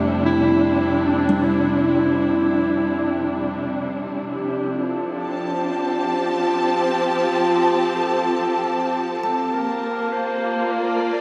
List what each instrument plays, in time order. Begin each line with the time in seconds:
Already playing: analog synth bass F2, string section C3 G3 D4 E4, synth drone F3 C4, kalimba A3 D5
0.26 clarinet E4
1.05 clarinet D4
1.29 kalimba G3
1.43 clarinet E4
1.86 clarinet E4
4.34 clarinet G4
4.73 string section F3, clarinet A4, glass harmonica A5
5.11 string section G4
5.16 string section C4
5.23 string section A5
5.55 clarinet C5
6.35 clarinet F4
7.14 clarinet F4
7.63 kalimba G5
7.95 clarinet A4
9.13 clarinet A4
9.23 kalimba A5
9.53 string section A#3, clarinet A#4
9.72 string section F4
10.13 clarinet C5
10.62 string section C5 D5
10.72 clarinet A#4
11.13 clarinet D5